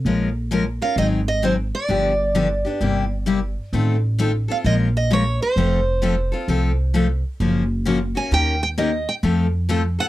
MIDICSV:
0, 0, Header, 1, 4, 480
1, 0, Start_track
1, 0, Tempo, 459067
1, 53, Time_signature, 4, 2, 24, 8
1, 10548, End_track
2, 0, Start_track
2, 0, Title_t, "Steel-string acoustic guitar"
2, 0, Program_c, 0, 25
2, 859, Note_on_c, 0, 77, 80
2, 1008, Note_off_c, 0, 77, 0
2, 1024, Note_on_c, 0, 75, 84
2, 1107, Note_off_c, 0, 75, 0
2, 1339, Note_on_c, 0, 75, 83
2, 1505, Note_off_c, 0, 75, 0
2, 1513, Note_on_c, 0, 72, 70
2, 1595, Note_off_c, 0, 72, 0
2, 1827, Note_on_c, 0, 74, 85
2, 3696, Note_off_c, 0, 74, 0
2, 4720, Note_on_c, 0, 77, 78
2, 4772, Note_off_c, 0, 77, 0
2, 4872, Note_on_c, 0, 75, 86
2, 4954, Note_off_c, 0, 75, 0
2, 5194, Note_on_c, 0, 75, 84
2, 5338, Note_off_c, 0, 75, 0
2, 5366, Note_on_c, 0, 73, 84
2, 5667, Note_off_c, 0, 73, 0
2, 5671, Note_on_c, 0, 72, 70
2, 7539, Note_off_c, 0, 72, 0
2, 8542, Note_on_c, 0, 80, 79
2, 8708, Note_off_c, 0, 80, 0
2, 8717, Note_on_c, 0, 79, 89
2, 9009, Note_off_c, 0, 79, 0
2, 9021, Note_on_c, 0, 79, 88
2, 9074, Note_off_c, 0, 79, 0
2, 9182, Note_on_c, 0, 75, 72
2, 9501, Note_on_c, 0, 79, 75
2, 9502, Note_off_c, 0, 75, 0
2, 9553, Note_off_c, 0, 79, 0
2, 10457, Note_on_c, 0, 78, 98
2, 10510, Note_off_c, 0, 78, 0
2, 10548, End_track
3, 0, Start_track
3, 0, Title_t, "Steel-string acoustic guitar"
3, 0, Program_c, 1, 25
3, 59, Note_on_c, 1, 53, 60
3, 64, Note_on_c, 1, 56, 60
3, 65, Note_on_c, 1, 61, 64
3, 70, Note_on_c, 1, 65, 60
3, 73, Note_on_c, 1, 70, 61
3, 288, Note_off_c, 1, 53, 0
3, 291, Note_off_c, 1, 56, 0
3, 292, Note_off_c, 1, 61, 0
3, 294, Note_off_c, 1, 65, 0
3, 296, Note_off_c, 1, 70, 0
3, 532, Note_on_c, 1, 53, 80
3, 538, Note_on_c, 1, 56, 87
3, 542, Note_on_c, 1, 61, 81
3, 544, Note_on_c, 1, 65, 79
3, 551, Note_on_c, 1, 70, 84
3, 656, Note_off_c, 1, 53, 0
3, 659, Note_off_c, 1, 56, 0
3, 661, Note_off_c, 1, 61, 0
3, 662, Note_off_c, 1, 65, 0
3, 665, Note_off_c, 1, 70, 0
3, 853, Note_on_c, 1, 70, 46
3, 867, Note_on_c, 1, 65, 45
3, 875, Note_on_c, 1, 61, 39
3, 1010, Note_off_c, 1, 70, 0
3, 1017, Note_off_c, 1, 65, 0
3, 1017, Note_on_c, 1, 51, 60
3, 1020, Note_off_c, 1, 61, 0
3, 1020, Note_on_c, 1, 54, 64
3, 1024, Note_on_c, 1, 60, 68
3, 1028, Note_on_c, 1, 63, 72
3, 1033, Note_on_c, 1, 68, 67
3, 1248, Note_off_c, 1, 51, 0
3, 1249, Note_off_c, 1, 54, 0
3, 1252, Note_off_c, 1, 60, 0
3, 1253, Note_off_c, 1, 63, 0
3, 1256, Note_off_c, 1, 68, 0
3, 1488, Note_on_c, 1, 51, 66
3, 1494, Note_on_c, 1, 54, 78
3, 1497, Note_on_c, 1, 60, 83
3, 1499, Note_on_c, 1, 63, 72
3, 1503, Note_on_c, 1, 68, 84
3, 1614, Note_off_c, 1, 51, 0
3, 1617, Note_off_c, 1, 54, 0
3, 1618, Note_off_c, 1, 60, 0
3, 1620, Note_off_c, 1, 63, 0
3, 1621, Note_off_c, 1, 68, 0
3, 1969, Note_on_c, 1, 50, 69
3, 1975, Note_on_c, 1, 53, 70
3, 1978, Note_on_c, 1, 59, 57
3, 1982, Note_on_c, 1, 62, 61
3, 1988, Note_on_c, 1, 67, 75
3, 2204, Note_off_c, 1, 50, 0
3, 2207, Note_off_c, 1, 53, 0
3, 2209, Note_off_c, 1, 59, 0
3, 2211, Note_off_c, 1, 62, 0
3, 2214, Note_off_c, 1, 67, 0
3, 2453, Note_on_c, 1, 50, 73
3, 2455, Note_on_c, 1, 53, 79
3, 2459, Note_on_c, 1, 59, 90
3, 2464, Note_on_c, 1, 62, 86
3, 2465, Note_on_c, 1, 67, 89
3, 2577, Note_off_c, 1, 50, 0
3, 2578, Note_off_c, 1, 53, 0
3, 2580, Note_off_c, 1, 59, 0
3, 2582, Note_off_c, 1, 62, 0
3, 2583, Note_off_c, 1, 67, 0
3, 2768, Note_on_c, 1, 67, 53
3, 2783, Note_on_c, 1, 62, 51
3, 2793, Note_on_c, 1, 59, 42
3, 2928, Note_off_c, 1, 67, 0
3, 2934, Note_on_c, 1, 48, 65
3, 2936, Note_off_c, 1, 62, 0
3, 2938, Note_off_c, 1, 59, 0
3, 2941, Note_on_c, 1, 55, 67
3, 2942, Note_on_c, 1, 58, 62
3, 2946, Note_on_c, 1, 64, 68
3, 2949, Note_on_c, 1, 67, 68
3, 3167, Note_off_c, 1, 48, 0
3, 3170, Note_off_c, 1, 55, 0
3, 3171, Note_off_c, 1, 58, 0
3, 3173, Note_off_c, 1, 64, 0
3, 3174, Note_off_c, 1, 67, 0
3, 3409, Note_on_c, 1, 48, 83
3, 3414, Note_on_c, 1, 55, 70
3, 3417, Note_on_c, 1, 58, 73
3, 3420, Note_on_c, 1, 64, 75
3, 3425, Note_on_c, 1, 67, 96
3, 3535, Note_off_c, 1, 48, 0
3, 3537, Note_off_c, 1, 55, 0
3, 3539, Note_off_c, 1, 58, 0
3, 3541, Note_off_c, 1, 64, 0
3, 3543, Note_off_c, 1, 67, 0
3, 3900, Note_on_c, 1, 51, 60
3, 3904, Note_on_c, 1, 57, 65
3, 3907, Note_on_c, 1, 60, 67
3, 3911, Note_on_c, 1, 65, 69
3, 3917, Note_on_c, 1, 69, 71
3, 4130, Note_off_c, 1, 51, 0
3, 4132, Note_off_c, 1, 57, 0
3, 4134, Note_off_c, 1, 60, 0
3, 4135, Note_off_c, 1, 65, 0
3, 4139, Note_off_c, 1, 69, 0
3, 4376, Note_on_c, 1, 51, 83
3, 4381, Note_on_c, 1, 57, 75
3, 4386, Note_on_c, 1, 60, 88
3, 4388, Note_on_c, 1, 65, 90
3, 4393, Note_on_c, 1, 69, 94
3, 4499, Note_off_c, 1, 51, 0
3, 4502, Note_off_c, 1, 57, 0
3, 4504, Note_off_c, 1, 60, 0
3, 4505, Note_off_c, 1, 65, 0
3, 4507, Note_off_c, 1, 69, 0
3, 4687, Note_on_c, 1, 69, 50
3, 4704, Note_on_c, 1, 65, 51
3, 4710, Note_on_c, 1, 60, 37
3, 4848, Note_off_c, 1, 69, 0
3, 4855, Note_on_c, 1, 53, 64
3, 4857, Note_off_c, 1, 65, 0
3, 4860, Note_off_c, 1, 60, 0
3, 4860, Note_on_c, 1, 56, 60
3, 4864, Note_on_c, 1, 61, 63
3, 4869, Note_on_c, 1, 65, 66
3, 4872, Note_on_c, 1, 70, 63
3, 5088, Note_off_c, 1, 53, 0
3, 5090, Note_off_c, 1, 56, 0
3, 5092, Note_off_c, 1, 61, 0
3, 5095, Note_off_c, 1, 65, 0
3, 5097, Note_off_c, 1, 70, 0
3, 5337, Note_on_c, 1, 53, 79
3, 5341, Note_on_c, 1, 56, 79
3, 5341, Note_on_c, 1, 61, 73
3, 5344, Note_on_c, 1, 65, 89
3, 5347, Note_on_c, 1, 70, 83
3, 5460, Note_off_c, 1, 53, 0
3, 5461, Note_off_c, 1, 56, 0
3, 5461, Note_off_c, 1, 61, 0
3, 5463, Note_off_c, 1, 65, 0
3, 5465, Note_off_c, 1, 70, 0
3, 5821, Note_on_c, 1, 53, 59
3, 5830, Note_on_c, 1, 57, 67
3, 5830, Note_on_c, 1, 60, 72
3, 5834, Note_on_c, 1, 65, 69
3, 5837, Note_on_c, 1, 69, 59
3, 6051, Note_off_c, 1, 53, 0
3, 6055, Note_off_c, 1, 57, 0
3, 6055, Note_off_c, 1, 60, 0
3, 6058, Note_off_c, 1, 65, 0
3, 6059, Note_off_c, 1, 69, 0
3, 6292, Note_on_c, 1, 53, 75
3, 6298, Note_on_c, 1, 57, 76
3, 6303, Note_on_c, 1, 60, 82
3, 6305, Note_on_c, 1, 65, 82
3, 6308, Note_on_c, 1, 69, 78
3, 6417, Note_off_c, 1, 53, 0
3, 6420, Note_off_c, 1, 57, 0
3, 6423, Note_off_c, 1, 60, 0
3, 6424, Note_off_c, 1, 65, 0
3, 6425, Note_off_c, 1, 69, 0
3, 6607, Note_on_c, 1, 69, 53
3, 6623, Note_on_c, 1, 65, 50
3, 6629, Note_on_c, 1, 60, 43
3, 6768, Note_off_c, 1, 69, 0
3, 6772, Note_off_c, 1, 60, 0
3, 6774, Note_off_c, 1, 65, 0
3, 6779, Note_on_c, 1, 53, 61
3, 6780, Note_on_c, 1, 57, 62
3, 6785, Note_on_c, 1, 60, 64
3, 6787, Note_on_c, 1, 65, 65
3, 6793, Note_on_c, 1, 69, 78
3, 7010, Note_off_c, 1, 53, 0
3, 7011, Note_off_c, 1, 57, 0
3, 7013, Note_off_c, 1, 60, 0
3, 7014, Note_off_c, 1, 65, 0
3, 7017, Note_off_c, 1, 69, 0
3, 7255, Note_on_c, 1, 53, 81
3, 7259, Note_on_c, 1, 57, 71
3, 7261, Note_on_c, 1, 60, 71
3, 7265, Note_on_c, 1, 65, 81
3, 7271, Note_on_c, 1, 69, 95
3, 7379, Note_off_c, 1, 53, 0
3, 7381, Note_off_c, 1, 57, 0
3, 7382, Note_off_c, 1, 60, 0
3, 7384, Note_off_c, 1, 65, 0
3, 7387, Note_off_c, 1, 69, 0
3, 7740, Note_on_c, 1, 49, 55
3, 7740, Note_on_c, 1, 53, 68
3, 7744, Note_on_c, 1, 58, 59
3, 7749, Note_on_c, 1, 61, 58
3, 7751, Note_on_c, 1, 66, 69
3, 7971, Note_off_c, 1, 49, 0
3, 7971, Note_off_c, 1, 53, 0
3, 7973, Note_off_c, 1, 58, 0
3, 7975, Note_off_c, 1, 61, 0
3, 7976, Note_off_c, 1, 66, 0
3, 8213, Note_on_c, 1, 49, 82
3, 8218, Note_on_c, 1, 53, 75
3, 8222, Note_on_c, 1, 58, 80
3, 8223, Note_on_c, 1, 61, 85
3, 8226, Note_on_c, 1, 66, 92
3, 8338, Note_off_c, 1, 49, 0
3, 8341, Note_off_c, 1, 53, 0
3, 8343, Note_off_c, 1, 58, 0
3, 8343, Note_off_c, 1, 61, 0
3, 8344, Note_off_c, 1, 66, 0
3, 8521, Note_on_c, 1, 66, 53
3, 8533, Note_on_c, 1, 61, 50
3, 8541, Note_on_c, 1, 58, 39
3, 8683, Note_off_c, 1, 58, 0
3, 8686, Note_off_c, 1, 66, 0
3, 8687, Note_off_c, 1, 61, 0
3, 8689, Note_on_c, 1, 51, 54
3, 8696, Note_on_c, 1, 58, 63
3, 8699, Note_on_c, 1, 61, 69
3, 8702, Note_on_c, 1, 67, 61
3, 8705, Note_on_c, 1, 70, 65
3, 8926, Note_off_c, 1, 51, 0
3, 8929, Note_off_c, 1, 58, 0
3, 8931, Note_off_c, 1, 61, 0
3, 8932, Note_off_c, 1, 67, 0
3, 8934, Note_off_c, 1, 70, 0
3, 9176, Note_on_c, 1, 51, 82
3, 9176, Note_on_c, 1, 58, 72
3, 9181, Note_on_c, 1, 61, 81
3, 9185, Note_on_c, 1, 67, 89
3, 9187, Note_on_c, 1, 70, 73
3, 9300, Note_off_c, 1, 51, 0
3, 9300, Note_off_c, 1, 58, 0
3, 9302, Note_off_c, 1, 61, 0
3, 9304, Note_off_c, 1, 67, 0
3, 9305, Note_off_c, 1, 70, 0
3, 9650, Note_on_c, 1, 53, 71
3, 9655, Note_on_c, 1, 57, 63
3, 9656, Note_on_c, 1, 60, 68
3, 9664, Note_on_c, 1, 65, 68
3, 9666, Note_on_c, 1, 69, 67
3, 9886, Note_off_c, 1, 53, 0
3, 9888, Note_off_c, 1, 57, 0
3, 9889, Note_off_c, 1, 60, 0
3, 9893, Note_off_c, 1, 65, 0
3, 9894, Note_off_c, 1, 69, 0
3, 10128, Note_on_c, 1, 53, 81
3, 10134, Note_on_c, 1, 57, 95
3, 10137, Note_on_c, 1, 60, 95
3, 10140, Note_on_c, 1, 65, 99
3, 10143, Note_on_c, 1, 69, 92
3, 10256, Note_off_c, 1, 53, 0
3, 10259, Note_off_c, 1, 57, 0
3, 10260, Note_off_c, 1, 60, 0
3, 10261, Note_off_c, 1, 65, 0
3, 10263, Note_off_c, 1, 69, 0
3, 10442, Note_on_c, 1, 69, 51
3, 10457, Note_on_c, 1, 65, 49
3, 10468, Note_on_c, 1, 60, 44
3, 10548, Note_off_c, 1, 60, 0
3, 10548, Note_off_c, 1, 65, 0
3, 10548, Note_off_c, 1, 69, 0
3, 10548, End_track
4, 0, Start_track
4, 0, Title_t, "Upright bass"
4, 0, Program_c, 2, 32
4, 48, Note_on_c, 2, 34, 69
4, 818, Note_off_c, 2, 34, 0
4, 1004, Note_on_c, 2, 32, 78
4, 1777, Note_off_c, 2, 32, 0
4, 1973, Note_on_c, 2, 31, 79
4, 2742, Note_off_c, 2, 31, 0
4, 2933, Note_on_c, 2, 31, 78
4, 3702, Note_off_c, 2, 31, 0
4, 3895, Note_on_c, 2, 33, 79
4, 4664, Note_off_c, 2, 33, 0
4, 4856, Note_on_c, 2, 34, 89
4, 5624, Note_off_c, 2, 34, 0
4, 5812, Note_on_c, 2, 29, 75
4, 6582, Note_off_c, 2, 29, 0
4, 6774, Note_on_c, 2, 36, 78
4, 7543, Note_off_c, 2, 36, 0
4, 7737, Note_on_c, 2, 30, 83
4, 8505, Note_off_c, 2, 30, 0
4, 8694, Note_on_c, 2, 39, 77
4, 9463, Note_off_c, 2, 39, 0
4, 9652, Note_on_c, 2, 41, 88
4, 10422, Note_off_c, 2, 41, 0
4, 10548, End_track
0, 0, End_of_file